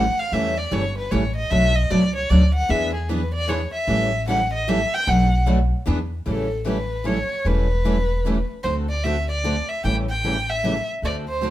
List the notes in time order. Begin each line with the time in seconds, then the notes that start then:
Already playing: F#5
0.19 F5
0.32 E2 C#3 E3 G3 A3 C#4 E4 G4 A4 E5
0.58 D5
0.71 G1 C#3 E3 G3 A3 C#4 E4 G4 A4 C#5
0.97 B4
1.11 A1 C#3 E3 G3 A3 C#4 E4 G4 A4 C#5
1.36 D#5
1.50 B1 B2 F#3 A3 D4 F#4 B4 E5
1.75 D#5
1.90 C#2 B2 F#3 A3 D4 F#4 B4 D5
2.15 C#5
2.29 D2 B2 F#3 A3 D4 F#4 B4 D5
2.54 F#5
2.69 E2 E3 B3 D4 G#4 B4 E5
2.94 G#4
3.09 E3 B3 D4 G#4 B4
3.34 D5
3.49 E3 B3 D4 G#4 B4 C#5
3.73 E5
3.88 A1 C#3 E3 G3 A3 C#4 E4 G4 A4
4.27 C#3 E3 G3 A3 C#4 E4 G4 A4 F#5
4.53 D#5
4.68 C#3 E3 G3 A3 C#4 E4 G4 A4 E5
4.94 G5
5.07 B1 B2 F#3 A3 D4 F#4 B4 F#5
5.47 B2 F#3 A3 D4 F#4 B4
5.87 E2 E3 B3 D4 G#4 B4
6.26 A1 C#3 E3 G3 A3 C#4 E4 G4 A4
6.65 C#3 E3 G3 A3 C#4 E4 G4 A4 B4
7.04 C#3 E3 G3 A3 C#4 E4 G4 A4 C#5
7.45 E1 C#3 E3 G3 A3 C#4 E4 G4 A4 B4
7.84 C#3 E3 G3 A3 C#4 E4 G4 A4
8.25 C#3 E3 G3 A3 C#4 E4 G4 A4
8.63 D2 D3 A3 C4 F#4 A4 C5
8.89 D5
9.04 D3 A3 C4 F#4 A4 E5
9.29 D5
9.44 D3 A3 C4 F#4 A4
9.69 E5
9.84 A1 C#3 E3 G3 A3 C#4 E4 G4 A4 G5
10.10 G5
10.23 C#3 E3 G3 A3 C#4 E4 G4 A4
10.50 E5
10.63 C#3 E3 G3 A3 C#4 E4 G4 A4
11.02 D2 D3 A3 C4 F#4 A4 D5
11.29 C5
11.41 D3 A3 C4 F#4 A4